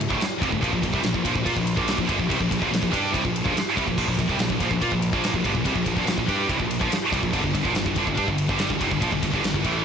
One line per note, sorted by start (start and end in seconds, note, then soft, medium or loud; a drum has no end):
0.01 ride medium
0.09 0.19 D1 medium
0.09 0.19 D2 medium
0.09 0.20 A2 loud
0.09 kick loud
0.20 muted picked electric bass stroke soft
0.20 muted distorted electric guitar stroke medium
0.20 snare loud
0.20 ride medium
0.41 0.51 F1 medium
0.41 0.51 F2 medium
0.41 0.51 C3 medium
0.41 kick loud
0.41 ride medium
0.51 0.62 D1 medium
0.51 0.62 D2 medium
0.51 0.62 A2 medium
0.51 kick medium
0.62 0.72 A#1 loud
0.62 0.72 A#2 medium
0.62 0.72 F3 loud
0.62 kick loud
0.62 ride medium
0.73 0.82 A#1 medium
0.73 0.83 A#2 medium
0.73 0.84 F3 medium
0.73 kick medium
0.83 0.92 A#1 medium
0.83 0.94 A#2 medium
0.83 0.94 F3 medium
0.83 kick medium
0.83 ride medium
0.94 1.02 C2 medium
0.94 1.03 C3 medium
0.94 1.04 G3 medium
0.94 kick medium
1.03 1.13 A#1 medium
1.03 1.12 A#2 medium
1.03 1.13 F3 medium
1.03 snare loud
1.03 ride medium
1.13 1.24 A#1 medium
1.13 1.23 A#2 medium
1.13 1.24 F3 medium
1.13 kick medium
1.25 1.35 A#1 medium
1.25 1.33 A#2 loud
1.25 1.34 F3 medium
1.25 kick medium
1.25 ride medium
1.34 1.45 A#1 medium
1.34 1.45 A#2 medium
1.34 1.46 F3 medium
1.34 kick medium
1.45 1.55 A#2 loud
1.45 1.55 A#3 medium
1.45 1.55 F4 loud
1.45 kick medium
1.45 ride loud
1.56 1.76 A#1 medium
1.56 1.73 A#2 medium
1.56 1.73 F3 medium
1.56 kick medium
1.67 ride medium
1.77 1.96 A#1 loud
1.77 1.97 A#2 medium
1.77 1.97 F3 medium
1.77 1.98 A#3 medium
1.77 kick loud
1.88 snare loud
1.88 ride loud
1.98 2.08 A#1 medium
1.98 2.08 A#2 medium
1.98 2.08 F3 medium
1.98 kick medium
2.09 2.18 G1 medium
2.09 2.18 G2 medium
2.09 2.18 D3 medium
2.09 kick medium
2.09 ride medium
2.19 2.29 A#1 medium
2.19 2.28 A#2 medium
2.19 2.28 F3 medium
2.19 kick medium
2.29 2.39 C2 medium
2.29 2.39 C3 loud
2.29 2.39 G3 medium
2.29 kick medium
2.29 ride loud
2.40 2.50 A#1 medium
2.40 2.48 A#2 medium
2.40 2.49 F3 medium
2.40 kick medium
2.50 2.61 A#1 medium
2.50 2.58 A#2 medium
2.50 2.59 F3 medium
2.50 kick medium
2.50 ride medium
2.59 2.71 A#1 medium
2.59 2.70 A#2 medium
2.59 2.70 F3 medium
2.59 kick medium
2.71 2.81 A#1 medium
2.71 2.79 A#2 medium
2.71 2.79 F3 medium
2.71 snare loud
2.71 ride medium
2.80 2.92 A#1 medium
2.80 2.92 A#2 medium
2.80 2.91 F3 medium
2.80 kick medium
2.91 3.12 G2 medium
2.91 3.11 G3 medium
2.91 3.12 D4 loud
2.91 3.12 G4 loud
2.91 kick medium
2.91 ride medium
3.11 3.23 C2 loud
3.11 3.22 C3 medium
3.11 3.23 G3 loud
3.11 kick loud
3.15 ride medium
3.23 3.44 A#1 medium
3.23 3.40 A#2 medium
3.23 3.41 F3 medium
3.23 kick medium
3.36 ride medium
3.43 3.55 A#1 medium
3.43 3.54 A#2 medium
3.43 3.55 F3 loud
3.43 kick loud
3.56 muted picked electric bass stroke soft
3.56 muted distorted electric guitar stroke medium
3.56 snare loud
3.56 ride medium
3.77 3.86 C2 medium
3.77 3.87 C3 medium
3.77 3.87 G3 medium
3.77 kick loud
3.77 ride medium
3.87 3.97 A#1 medium
3.87 3.96 A#2 medium
3.87 3.96 F3 medium
3.87 kick medium
3.97 4.07 A#1 medium
3.97 4.06 A#2 medium
3.97 4.06 F3 loud
3.97 kick loud
3.97 crash loud
4.07 4.18 A#1 medium
4.07 4.16 A#2 medium
4.07 4.16 F3 medium
4.07 kick medium
4.17 4.28 A#1 medium
4.17 4.26 A#2 medium
4.17 4.27 F3 medium
4.17 kick medium
4.17 ride medium
4.26 4.38 C2 medium
4.26 4.37 C3 medium
4.26 4.37 G3 medium
4.26 kick medium
4.37 4.49 A#1 medium
4.37 4.47 A#2 medium
4.37 4.47 F3 medium
4.37 snare loud
4.37 ride medium
4.41 4.51 F3 medium
4.48 4.59 A#1 medium
4.48 4.57 A#2 medium
4.48 4.59 F3 medium
4.48 kick medium
4.58 4.70 A#1 medium
4.58 4.68 A#2 medium
4.58 4.68 F3 loud
4.58 kick medium
4.58 ride medium
4.69 4.81 A#1 medium
4.69 4.81 A#2 medium
4.69 4.81 F3 medium
4.69 kick medium
4.81 4.91 A#2 medium
4.81 4.91 A#3 medium
4.81 4.92 F4 loud
4.81 kick medium
4.81 ride medium
4.91 5.11 A#1 medium
4.91 5.08 A#2 medium
4.91 5.09 F3 medium
4.91 kick medium
5.02 ride medium
5.12 5.33 A#1 medium
5.12 5.32 A#2 medium
5.12 5.32 F3 medium
5.12 5.34 A#3 loud
5.12 kick loud
5.24 snare loud
5.24 ride loud
5.33 5.44 A#1 medium
5.33 5.44 A#2 medium
5.33 5.44 F3 medium
5.33 kick medium
5.44 5.54 G1 medium
5.44 5.54 G2 medium
5.44 5.54 D3 medium
5.44 kick medium
5.44 ride medium
5.54 5.65 A#1 medium
5.54 5.63 A#2 medium
5.54 5.64 F3 medium
5.54 kick medium
5.64 5.75 C2 loud
5.64 5.74 C3 loud
5.64 5.75 G3 medium
5.64 kick medium
5.64 ride loud
5.75 5.85 A#1 medium
5.75 5.84 A#2 medium
5.75 5.84 F3 medium
5.75 kick medium
5.85 5.96 A#1 medium
5.85 5.94 A#2 medium
5.85 5.95 F3 medium
5.85 kick medium
5.85 ride medium
5.96 6.05 A#1 medium
5.96 6.04 A#2 medium
5.96 6.05 F3 loud
5.96 kick medium
6.05 6.16 A#1 medium
6.05 6.15 A#2 medium
6.05 6.15 F3 medium
6.05 snare loud
6.05 ride loud
6.16 6.28 A#1 medium
6.16 6.28 A#2 medium
6.16 6.28 F3 medium
6.16 kick medium
6.27 6.48 G2 medium
6.27 6.47 G3 loud
6.27 6.48 D4 medium
6.27 6.48 G4 loud
6.27 kick medium
6.27 ride medium
6.48 6.59 C2 loud
6.48 6.58 C3 medium
6.48 6.59 G3 loud
6.48 kick loud
6.48 ride medium
6.58 6.79 A#1 medium
6.58 6.76 A#2 medium
6.58 6.77 F3 medium
6.58 kick medium
6.71 ride medium
6.80 6.89 A#1 loud
6.80 6.90 A#2 medium
6.80 6.91 F3 medium
6.80 kick loud
6.89 muted picked electric bass stroke soft
6.89 muted distorted electric guitar stroke medium
6.89 snare loud
6.89 ride medium
7.12 7.22 C2 medium
7.12 7.22 C3 medium
7.12 7.22 G3 medium
7.12 kick loud
7.12 ride medium
7.23 7.33 A#1 medium
7.23 7.32 A#2 medium
7.23 7.33 F3 medium
7.23 kick medium
7.33 7.43 G1 loud
7.33 7.43 G2 loud
7.33 7.43 D3 loud
7.33 kick loud
7.33 ride medium
7.44 7.54 G1 medium
7.44 7.53 G2 medium
7.44 7.53 D3 medium
7.44 kick medium
7.54 7.64 G1 medium
7.54 7.63 G2 medium
7.54 7.64 D3 medium
7.54 kick medium
7.54 ride medium
7.63 7.73 A#1 medium
7.63 7.74 A#2 medium
7.63 7.74 F3 loud
7.63 kick medium
7.73 7.84 G1 medium
7.73 7.85 G2 medium
7.73 7.85 D3 medium
7.73 snare loud
7.73 ride medium
7.86 7.96 G1 medium
7.86 7.96 G2 medium
7.86 7.97 D3 medium
7.86 kick medium
7.96 8.06 G1 medium
7.96 8.07 G2 loud
7.96 8.07 D3 loud
7.96 kick medium
7.96 ride medium
8.07 8.17 G1 medium
8.07 8.18 G2 medium
8.07 8.18 D3 medium
8.07 kick medium
8.15 8.27 G2 loud
8.15 8.27 G3 loud
8.15 8.26 D4 loud
8.15 kick medium
8.15 ride medium
8.19 8.28 D4 loud
8.28 8.47 G1 medium
8.28 8.45 G2 medium
8.28 8.45 D3 medium
8.28 kick medium
8.38 ride medium
8.49 8.68 G1 medium
8.49 8.69 G2 medium
8.49 8.69 D3 medium
8.49 8.70 G3 medium
8.49 kick loud
8.59 snare loud
8.59 ride loud
8.70 8.80 G1 medium
8.70 8.79 G2 medium
8.70 8.80 D3 medium
8.70 kick medium
8.80 8.90 F1 medium
8.80 8.89 F2 medium
8.80 8.89 C3 loud
8.80 kick medium
8.80 ride medium
8.89 9.01 G1 medium
8.89 8.99 G2 medium
8.89 9.00 D3 medium
8.89 kick medium
8.99 9.11 A#1 medium
8.99 9.10 A#2 medium
8.99 9.11 F3 loud
8.99 kick medium
8.99 ride loud
9.11 9.22 G1 medium
9.11 9.20 G2 medium
9.11 9.21 D3 medium
9.11 kick medium
9.21 9.32 G1 medium
9.21 9.30 G2 medium
9.21 9.31 D3 medium
9.21 kick medium
9.21 ride medium
9.31 9.42 G1 medium
9.31 9.40 G2 medium
9.31 9.41 D3 medium
9.31 kick medium
9.42 9.53 G1 medium
9.42 9.52 G2 medium
9.42 9.53 D3 medium
9.42 snare loud
9.42 ride loud
9.53 9.63 G1 medium
9.53 9.63 G2 medium
9.53 9.64 D3 medium
9.53 kick medium
9.64 9.84 A1 medium
9.64 9.84 A2 medium
9.64 9.84 E3 medium
9.64 9.84 A3 medium
9.64 kick medium
9.64 ride medium